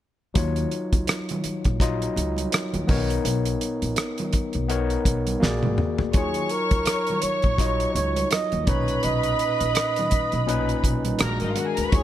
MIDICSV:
0, 0, Header, 1, 7, 480
1, 0, Start_track
1, 0, Key_signature, -6, "minor"
1, 0, Tempo, 723764
1, 236, Time_signature, 4, 2, 24, 8
1, 7979, End_track
2, 0, Start_track
2, 0, Title_t, "String section"
2, 0, Program_c, 0, 48
2, 4073, Note_on_c, 0, 85, 86
2, 4074, Note_on_c, 0, 73, 78
2, 5488, Note_off_c, 0, 73, 0
2, 5488, Note_off_c, 0, 85, 0
2, 5761, Note_on_c, 0, 83, 84
2, 5763, Note_on_c, 0, 71, 76
2, 7170, Note_off_c, 0, 83, 0
2, 7171, Note_off_c, 0, 71, 0
2, 7437, Note_on_c, 0, 70, 65
2, 7437, Note_on_c, 0, 82, 74
2, 7571, Note_off_c, 0, 82, 0
2, 7572, Note_off_c, 0, 70, 0
2, 7574, Note_on_c, 0, 63, 54
2, 7575, Note_on_c, 0, 75, 60
2, 7619, Note_on_c, 0, 65, 58
2, 7620, Note_on_c, 0, 77, 60
2, 7624, Note_off_c, 0, 63, 0
2, 7624, Note_off_c, 0, 75, 0
2, 7669, Note_on_c, 0, 78, 65
2, 7671, Note_off_c, 0, 65, 0
2, 7671, Note_on_c, 0, 66, 61
2, 7672, Note_off_c, 0, 77, 0
2, 7734, Note_on_c, 0, 80, 69
2, 7735, Note_on_c, 0, 68, 63
2, 7740, Note_off_c, 0, 78, 0
2, 7741, Note_off_c, 0, 66, 0
2, 7799, Note_on_c, 0, 70, 63
2, 7799, Note_on_c, 0, 82, 77
2, 7808, Note_off_c, 0, 68, 0
2, 7808, Note_off_c, 0, 80, 0
2, 7851, Note_on_c, 0, 71, 71
2, 7854, Note_on_c, 0, 83, 82
2, 7856, Note_off_c, 0, 70, 0
2, 7856, Note_off_c, 0, 82, 0
2, 7905, Note_on_c, 0, 85, 91
2, 7907, Note_off_c, 0, 71, 0
2, 7908, Note_off_c, 0, 83, 0
2, 7909, Note_on_c, 0, 73, 85
2, 7979, Note_off_c, 0, 73, 0
2, 7979, Note_off_c, 0, 85, 0
2, 7979, End_track
3, 0, Start_track
3, 0, Title_t, "Flugelhorn"
3, 0, Program_c, 1, 56
3, 4076, Note_on_c, 1, 68, 75
3, 4317, Note_on_c, 1, 70, 85
3, 4327, Note_off_c, 1, 68, 0
3, 4790, Note_on_c, 1, 73, 95
3, 4800, Note_off_c, 1, 70, 0
3, 5265, Note_off_c, 1, 73, 0
3, 5269, Note_on_c, 1, 73, 88
3, 5496, Note_off_c, 1, 73, 0
3, 5516, Note_on_c, 1, 75, 94
3, 5761, Note_on_c, 1, 73, 82
3, 5771, Note_off_c, 1, 75, 0
3, 5993, Note_on_c, 1, 75, 107
3, 6003, Note_off_c, 1, 73, 0
3, 7432, Note_off_c, 1, 75, 0
3, 7914, Note_on_c, 1, 68, 82
3, 7979, Note_off_c, 1, 68, 0
3, 7979, End_track
4, 0, Start_track
4, 0, Title_t, "Tine electric piano"
4, 0, Program_c, 2, 4
4, 226, Note_on_c, 2, 54, 73
4, 235, Note_on_c, 2, 63, 63
4, 240, Note_on_c, 2, 65, 70
4, 247, Note_on_c, 2, 73, 81
4, 354, Control_c, 2, 64, 127
4, 928, Note_off_c, 2, 54, 0
4, 932, Note_off_c, 2, 63, 0
4, 935, Note_off_c, 2, 65, 0
4, 938, Note_off_c, 2, 73, 0
4, 1194, Note_on_c, 2, 54, 75
4, 1199, Note_on_c, 2, 63, 68
4, 1204, Note_on_c, 2, 65, 69
4, 1210, Note_on_c, 2, 75, 85
4, 1892, Note_off_c, 2, 54, 0
4, 1894, Note_off_c, 2, 63, 0
4, 1897, Note_off_c, 2, 65, 0
4, 1900, Note_off_c, 2, 75, 0
4, 1906, Note_on_c, 2, 59, 82
4, 1917, Note_on_c, 2, 63, 69
4, 1922, Note_on_c, 2, 70, 71
4, 1926, Control_c, 2, 64, 0
4, 1930, Note_on_c, 2, 73, 85
4, 2029, Control_c, 2, 64, 127
4, 2687, Note_off_c, 2, 59, 0
4, 2693, Note_off_c, 2, 63, 0
4, 2696, Note_off_c, 2, 70, 0
4, 2699, Note_off_c, 2, 73, 0
4, 3105, Note_on_c, 2, 59, 77
4, 3114, Note_on_c, 2, 63, 69
4, 3118, Note_on_c, 2, 70, 74
4, 3124, Note_on_c, 2, 73, 80
4, 3582, Note_on_c, 2, 58, 76
4, 3588, Note_on_c, 2, 66, 68
4, 3591, Note_off_c, 2, 59, 0
4, 3596, Note_off_c, 2, 63, 0
4, 3598, Note_off_c, 2, 70, 0
4, 3598, Note_on_c, 2, 68, 69
4, 3601, Note_off_c, 2, 73, 0
4, 3602, Note_on_c, 2, 74, 75
4, 3605, Control_c, 2, 64, 0
4, 3721, Control_c, 2, 64, 127
4, 3989, Note_off_c, 2, 58, 0
4, 3992, Note_off_c, 2, 66, 0
4, 3997, Note_off_c, 2, 68, 0
4, 3999, Note_off_c, 2, 74, 0
4, 4073, Note_on_c, 2, 54, 64
4, 4079, Note_on_c, 2, 63, 59
4, 4087, Control_c, 2, 64, 0
4, 4089, Note_on_c, 2, 65, 62
4, 4094, Note_on_c, 2, 73, 74
4, 4214, Control_c, 2, 64, 127
4, 4771, Note_off_c, 2, 54, 0
4, 4774, Note_off_c, 2, 63, 0
4, 4779, Note_off_c, 2, 65, 0
4, 4781, Note_off_c, 2, 73, 0
4, 5027, Note_on_c, 2, 54, 62
4, 5035, Note_on_c, 2, 63, 60
4, 5040, Note_on_c, 2, 65, 59
4, 5047, Note_on_c, 2, 75, 66
4, 5727, Note_off_c, 2, 54, 0
4, 5731, Note_off_c, 2, 63, 0
4, 5734, Note_off_c, 2, 65, 0
4, 5737, Note_off_c, 2, 75, 0
4, 5747, Note_on_c, 2, 46, 65
4, 5754, Note_on_c, 2, 61, 61
4, 5760, Note_on_c, 2, 63, 64
4, 5764, Control_c, 2, 64, 0
4, 5765, Note_on_c, 2, 71, 72
4, 5870, Control_c, 2, 64, 127
4, 6526, Note_off_c, 2, 46, 0
4, 6530, Note_off_c, 2, 61, 0
4, 6533, Note_off_c, 2, 63, 0
4, 6535, Note_off_c, 2, 71, 0
4, 6939, Note_on_c, 2, 46, 74
4, 6945, Note_on_c, 2, 61, 72
4, 6951, Note_on_c, 2, 63, 71
4, 6958, Note_on_c, 2, 71, 86
4, 7424, Note_on_c, 2, 56, 71
4, 7426, Note_off_c, 2, 46, 0
4, 7428, Note_off_c, 2, 61, 0
4, 7428, Note_on_c, 2, 62, 71
4, 7432, Note_off_c, 2, 63, 0
4, 7434, Note_on_c, 2, 66, 67
4, 7435, Note_off_c, 2, 71, 0
4, 7440, Control_c, 2, 64, 0
4, 7442, Note_on_c, 2, 70, 92
4, 7539, Control_c, 2, 64, 127
4, 7827, Note_off_c, 2, 56, 0
4, 7829, Note_off_c, 2, 62, 0
4, 7832, Note_off_c, 2, 66, 0
4, 7836, Note_off_c, 2, 70, 0
4, 7907, Note_on_c, 2, 54, 60
4, 7913, Note_on_c, 2, 63, 57
4, 7919, Note_on_c, 2, 65, 57
4, 7920, Control_c, 2, 64, 0
4, 7928, Note_on_c, 2, 73, 66
4, 7979, Note_off_c, 2, 54, 0
4, 7979, Note_off_c, 2, 63, 0
4, 7979, Note_off_c, 2, 65, 0
4, 7979, Note_off_c, 2, 73, 0
4, 7979, End_track
5, 0, Start_track
5, 0, Title_t, "Upright bass"
5, 0, Program_c, 3, 32
5, 237, Note_on_c, 3, 39, 102
5, 422, Note_off_c, 3, 39, 0
5, 617, Note_on_c, 3, 37, 73
5, 694, Note_off_c, 3, 37, 0
5, 1098, Note_on_c, 3, 34, 81
5, 1361, Note_off_c, 3, 34, 0
5, 1435, Note_on_c, 3, 37, 81
5, 1621, Note_off_c, 3, 37, 0
5, 1816, Note_on_c, 3, 39, 74
5, 1894, Note_off_c, 3, 39, 0
5, 1919, Note_on_c, 3, 35, 88
5, 2104, Note_off_c, 3, 35, 0
5, 2153, Note_on_c, 3, 35, 91
5, 2340, Note_off_c, 3, 35, 0
5, 2535, Note_on_c, 3, 34, 71
5, 2614, Note_off_c, 3, 34, 0
5, 3017, Note_on_c, 3, 35, 79
5, 3280, Note_off_c, 3, 35, 0
5, 3351, Note_on_c, 3, 35, 76
5, 3539, Note_off_c, 3, 35, 0
5, 3597, Note_on_c, 3, 34, 90
5, 3704, Note_off_c, 3, 34, 0
5, 3735, Note_on_c, 3, 32, 86
5, 3814, Note_off_c, 3, 32, 0
5, 3978, Note_on_c, 3, 38, 79
5, 4055, Note_off_c, 3, 38, 0
5, 4074, Note_on_c, 3, 39, 87
5, 4261, Note_off_c, 3, 39, 0
5, 4453, Note_on_c, 3, 37, 62
5, 4532, Note_off_c, 3, 37, 0
5, 4935, Note_on_c, 3, 34, 72
5, 5198, Note_off_c, 3, 34, 0
5, 5274, Note_on_c, 3, 37, 80
5, 5460, Note_off_c, 3, 37, 0
5, 5654, Note_on_c, 3, 39, 72
5, 5732, Note_off_c, 3, 39, 0
5, 5754, Note_on_c, 3, 35, 88
5, 5940, Note_off_c, 3, 35, 0
5, 5997, Note_on_c, 3, 35, 95
5, 6182, Note_off_c, 3, 35, 0
5, 6371, Note_on_c, 3, 34, 68
5, 6450, Note_off_c, 3, 34, 0
5, 6852, Note_on_c, 3, 35, 80
5, 7116, Note_off_c, 3, 35, 0
5, 7189, Note_on_c, 3, 35, 79
5, 7376, Note_off_c, 3, 35, 0
5, 7432, Note_on_c, 3, 34, 95
5, 7540, Note_off_c, 3, 34, 0
5, 7572, Note_on_c, 3, 32, 86
5, 7650, Note_off_c, 3, 32, 0
5, 7811, Note_on_c, 3, 38, 74
5, 7889, Note_off_c, 3, 38, 0
5, 7909, Note_on_c, 3, 39, 92
5, 7979, Note_off_c, 3, 39, 0
5, 7979, End_track
6, 0, Start_track
6, 0, Title_t, "Muted upright bass strokes"
6, 956, Note_on_c, 9, 29, 40
6, 1023, Note_off_c, 9, 29, 0
6, 2876, Note_on_c, 9, 29, 42
6, 2943, Note_off_c, 9, 29, 0
6, 4796, Note_on_c, 9, 29, 41
6, 4863, Note_off_c, 9, 29, 0
6, 6712, Note_on_c, 9, 29, 42
6, 6778, Note_off_c, 9, 29, 0
6, 7979, End_track
7, 0, Start_track
7, 0, Title_t, "Drums"
7, 234, Note_on_c, 9, 42, 79
7, 236, Note_on_c, 9, 36, 94
7, 301, Note_off_c, 9, 42, 0
7, 303, Note_off_c, 9, 36, 0
7, 372, Note_on_c, 9, 42, 42
7, 438, Note_off_c, 9, 42, 0
7, 474, Note_on_c, 9, 42, 51
7, 540, Note_off_c, 9, 42, 0
7, 614, Note_on_c, 9, 42, 43
7, 615, Note_on_c, 9, 36, 84
7, 681, Note_off_c, 9, 36, 0
7, 681, Note_off_c, 9, 42, 0
7, 712, Note_on_c, 9, 42, 84
7, 721, Note_on_c, 9, 62, 27
7, 724, Note_on_c, 9, 37, 90
7, 779, Note_off_c, 9, 42, 0
7, 787, Note_off_c, 9, 62, 0
7, 790, Note_off_c, 9, 37, 0
7, 854, Note_on_c, 9, 42, 47
7, 869, Note_on_c, 9, 63, 61
7, 869, Note_on_c, 9, 64, 70
7, 921, Note_off_c, 9, 42, 0
7, 935, Note_off_c, 9, 63, 0
7, 935, Note_off_c, 9, 64, 0
7, 953, Note_on_c, 9, 42, 70
7, 956, Note_on_c, 9, 62, 27
7, 1020, Note_off_c, 9, 42, 0
7, 1023, Note_off_c, 9, 62, 0
7, 1091, Note_on_c, 9, 42, 35
7, 1097, Note_on_c, 9, 36, 71
7, 1157, Note_off_c, 9, 42, 0
7, 1163, Note_off_c, 9, 36, 0
7, 1193, Note_on_c, 9, 36, 84
7, 1193, Note_on_c, 9, 62, 30
7, 1202, Note_on_c, 9, 42, 77
7, 1208, Note_on_c, 9, 37, 32
7, 1260, Note_off_c, 9, 36, 0
7, 1260, Note_off_c, 9, 62, 0
7, 1268, Note_off_c, 9, 42, 0
7, 1275, Note_off_c, 9, 37, 0
7, 1339, Note_on_c, 9, 42, 41
7, 1405, Note_off_c, 9, 42, 0
7, 1434, Note_on_c, 9, 62, 28
7, 1442, Note_on_c, 9, 42, 68
7, 1501, Note_off_c, 9, 62, 0
7, 1508, Note_off_c, 9, 42, 0
7, 1568, Note_on_c, 9, 63, 65
7, 1578, Note_on_c, 9, 42, 50
7, 1634, Note_off_c, 9, 63, 0
7, 1644, Note_off_c, 9, 42, 0
7, 1673, Note_on_c, 9, 42, 91
7, 1686, Note_on_c, 9, 37, 96
7, 1740, Note_off_c, 9, 42, 0
7, 1752, Note_off_c, 9, 37, 0
7, 1813, Note_on_c, 9, 63, 56
7, 1813, Note_on_c, 9, 64, 64
7, 1815, Note_on_c, 9, 42, 41
7, 1879, Note_off_c, 9, 63, 0
7, 1879, Note_off_c, 9, 64, 0
7, 1881, Note_off_c, 9, 42, 0
7, 1910, Note_on_c, 9, 62, 31
7, 1910, Note_on_c, 9, 64, 59
7, 1914, Note_on_c, 9, 46, 74
7, 1917, Note_on_c, 9, 36, 92
7, 1977, Note_off_c, 9, 62, 0
7, 1977, Note_off_c, 9, 64, 0
7, 1981, Note_off_c, 9, 46, 0
7, 1983, Note_off_c, 9, 36, 0
7, 2058, Note_on_c, 9, 42, 49
7, 2124, Note_off_c, 9, 42, 0
7, 2156, Note_on_c, 9, 42, 80
7, 2222, Note_off_c, 9, 42, 0
7, 2291, Note_on_c, 9, 42, 50
7, 2357, Note_off_c, 9, 42, 0
7, 2395, Note_on_c, 9, 42, 57
7, 2397, Note_on_c, 9, 62, 32
7, 2462, Note_off_c, 9, 42, 0
7, 2463, Note_off_c, 9, 62, 0
7, 2534, Note_on_c, 9, 42, 46
7, 2600, Note_off_c, 9, 42, 0
7, 2628, Note_on_c, 9, 42, 74
7, 2640, Note_on_c, 9, 37, 98
7, 2694, Note_off_c, 9, 42, 0
7, 2706, Note_off_c, 9, 37, 0
7, 2770, Note_on_c, 9, 42, 46
7, 2783, Note_on_c, 9, 63, 63
7, 2783, Note_on_c, 9, 64, 70
7, 2837, Note_off_c, 9, 42, 0
7, 2850, Note_off_c, 9, 63, 0
7, 2850, Note_off_c, 9, 64, 0
7, 2869, Note_on_c, 9, 42, 72
7, 2875, Note_on_c, 9, 36, 68
7, 2936, Note_off_c, 9, 42, 0
7, 2941, Note_off_c, 9, 36, 0
7, 3004, Note_on_c, 9, 42, 37
7, 3070, Note_off_c, 9, 42, 0
7, 3113, Note_on_c, 9, 62, 33
7, 3114, Note_on_c, 9, 42, 69
7, 3180, Note_off_c, 9, 62, 0
7, 3181, Note_off_c, 9, 42, 0
7, 3250, Note_on_c, 9, 42, 40
7, 3317, Note_off_c, 9, 42, 0
7, 3352, Note_on_c, 9, 36, 71
7, 3354, Note_on_c, 9, 62, 27
7, 3355, Note_on_c, 9, 42, 69
7, 3418, Note_off_c, 9, 36, 0
7, 3420, Note_off_c, 9, 62, 0
7, 3422, Note_off_c, 9, 42, 0
7, 3493, Note_on_c, 9, 42, 51
7, 3494, Note_on_c, 9, 63, 67
7, 3559, Note_off_c, 9, 42, 0
7, 3561, Note_off_c, 9, 63, 0
7, 3600, Note_on_c, 9, 38, 49
7, 3666, Note_off_c, 9, 38, 0
7, 3732, Note_on_c, 9, 48, 54
7, 3739, Note_on_c, 9, 63, 59
7, 3739, Note_on_c, 9, 64, 64
7, 3798, Note_off_c, 9, 48, 0
7, 3805, Note_off_c, 9, 63, 0
7, 3805, Note_off_c, 9, 64, 0
7, 3832, Note_on_c, 9, 45, 76
7, 3838, Note_on_c, 9, 62, 28
7, 3838, Note_on_c, 9, 64, 62
7, 3899, Note_off_c, 9, 45, 0
7, 3904, Note_off_c, 9, 62, 0
7, 3904, Note_off_c, 9, 64, 0
7, 3969, Note_on_c, 9, 43, 79
7, 4035, Note_off_c, 9, 43, 0
7, 4068, Note_on_c, 9, 42, 73
7, 4074, Note_on_c, 9, 36, 99
7, 4134, Note_off_c, 9, 42, 0
7, 4140, Note_off_c, 9, 36, 0
7, 4206, Note_on_c, 9, 42, 45
7, 4272, Note_off_c, 9, 42, 0
7, 4307, Note_on_c, 9, 42, 54
7, 4373, Note_off_c, 9, 42, 0
7, 4449, Note_on_c, 9, 42, 40
7, 4452, Note_on_c, 9, 36, 85
7, 4516, Note_off_c, 9, 42, 0
7, 4518, Note_off_c, 9, 36, 0
7, 4546, Note_on_c, 9, 42, 85
7, 4558, Note_on_c, 9, 37, 93
7, 4613, Note_off_c, 9, 42, 0
7, 4625, Note_off_c, 9, 37, 0
7, 4687, Note_on_c, 9, 42, 46
7, 4709, Note_on_c, 9, 63, 64
7, 4709, Note_on_c, 9, 64, 63
7, 4753, Note_off_c, 9, 42, 0
7, 4775, Note_off_c, 9, 63, 0
7, 4775, Note_off_c, 9, 64, 0
7, 4786, Note_on_c, 9, 42, 68
7, 4798, Note_on_c, 9, 62, 27
7, 4852, Note_off_c, 9, 42, 0
7, 4864, Note_off_c, 9, 62, 0
7, 4923, Note_on_c, 9, 42, 34
7, 4933, Note_on_c, 9, 36, 67
7, 4990, Note_off_c, 9, 42, 0
7, 4999, Note_off_c, 9, 36, 0
7, 5030, Note_on_c, 9, 36, 80
7, 5035, Note_on_c, 9, 42, 72
7, 5042, Note_on_c, 9, 37, 27
7, 5096, Note_off_c, 9, 36, 0
7, 5101, Note_off_c, 9, 42, 0
7, 5108, Note_off_c, 9, 37, 0
7, 5173, Note_on_c, 9, 42, 41
7, 5239, Note_off_c, 9, 42, 0
7, 5275, Note_on_c, 9, 62, 28
7, 5276, Note_on_c, 9, 42, 59
7, 5342, Note_off_c, 9, 62, 0
7, 5343, Note_off_c, 9, 42, 0
7, 5411, Note_on_c, 9, 63, 65
7, 5414, Note_on_c, 9, 42, 50
7, 5477, Note_off_c, 9, 63, 0
7, 5481, Note_off_c, 9, 42, 0
7, 5509, Note_on_c, 9, 42, 81
7, 5521, Note_on_c, 9, 37, 97
7, 5521, Note_on_c, 9, 62, 32
7, 5575, Note_off_c, 9, 42, 0
7, 5587, Note_off_c, 9, 62, 0
7, 5588, Note_off_c, 9, 37, 0
7, 5650, Note_on_c, 9, 42, 39
7, 5656, Note_on_c, 9, 63, 63
7, 5716, Note_off_c, 9, 42, 0
7, 5722, Note_off_c, 9, 63, 0
7, 5750, Note_on_c, 9, 42, 72
7, 5751, Note_on_c, 9, 62, 26
7, 5751, Note_on_c, 9, 64, 57
7, 5753, Note_on_c, 9, 36, 96
7, 5817, Note_off_c, 9, 42, 0
7, 5818, Note_off_c, 9, 62, 0
7, 5818, Note_off_c, 9, 64, 0
7, 5819, Note_off_c, 9, 36, 0
7, 5889, Note_on_c, 9, 42, 46
7, 5955, Note_off_c, 9, 42, 0
7, 5988, Note_on_c, 9, 42, 75
7, 5997, Note_on_c, 9, 62, 29
7, 6054, Note_off_c, 9, 42, 0
7, 6063, Note_off_c, 9, 62, 0
7, 6124, Note_on_c, 9, 42, 46
7, 6190, Note_off_c, 9, 42, 0
7, 6229, Note_on_c, 9, 42, 54
7, 6295, Note_off_c, 9, 42, 0
7, 6370, Note_on_c, 9, 42, 44
7, 6437, Note_off_c, 9, 42, 0
7, 6466, Note_on_c, 9, 42, 80
7, 6478, Note_on_c, 9, 37, 95
7, 6532, Note_off_c, 9, 42, 0
7, 6544, Note_off_c, 9, 37, 0
7, 6607, Note_on_c, 9, 42, 44
7, 6626, Note_on_c, 9, 63, 66
7, 6626, Note_on_c, 9, 64, 67
7, 6674, Note_off_c, 9, 42, 0
7, 6692, Note_off_c, 9, 63, 0
7, 6692, Note_off_c, 9, 64, 0
7, 6705, Note_on_c, 9, 42, 68
7, 6711, Note_on_c, 9, 36, 72
7, 6771, Note_off_c, 9, 42, 0
7, 6778, Note_off_c, 9, 36, 0
7, 6844, Note_on_c, 9, 42, 34
7, 6911, Note_off_c, 9, 42, 0
7, 6955, Note_on_c, 9, 42, 66
7, 7021, Note_off_c, 9, 42, 0
7, 7089, Note_on_c, 9, 42, 39
7, 7155, Note_off_c, 9, 42, 0
7, 7187, Note_on_c, 9, 36, 71
7, 7192, Note_on_c, 9, 42, 61
7, 7253, Note_off_c, 9, 36, 0
7, 7258, Note_off_c, 9, 42, 0
7, 7326, Note_on_c, 9, 42, 53
7, 7327, Note_on_c, 9, 63, 66
7, 7393, Note_off_c, 9, 42, 0
7, 7394, Note_off_c, 9, 63, 0
7, 7419, Note_on_c, 9, 42, 83
7, 7432, Note_on_c, 9, 37, 103
7, 7485, Note_off_c, 9, 42, 0
7, 7498, Note_off_c, 9, 37, 0
7, 7560, Note_on_c, 9, 42, 42
7, 7573, Note_on_c, 9, 63, 62
7, 7626, Note_off_c, 9, 42, 0
7, 7639, Note_off_c, 9, 63, 0
7, 7664, Note_on_c, 9, 42, 76
7, 7666, Note_on_c, 9, 62, 30
7, 7666, Note_on_c, 9, 64, 55
7, 7730, Note_off_c, 9, 42, 0
7, 7732, Note_off_c, 9, 62, 0
7, 7732, Note_off_c, 9, 64, 0
7, 7805, Note_on_c, 9, 42, 49
7, 7871, Note_off_c, 9, 42, 0
7, 7907, Note_on_c, 9, 42, 73
7, 7909, Note_on_c, 9, 36, 100
7, 7913, Note_on_c, 9, 62, 28
7, 7974, Note_off_c, 9, 42, 0
7, 7975, Note_off_c, 9, 36, 0
7, 7979, Note_off_c, 9, 62, 0
7, 7979, End_track
0, 0, End_of_file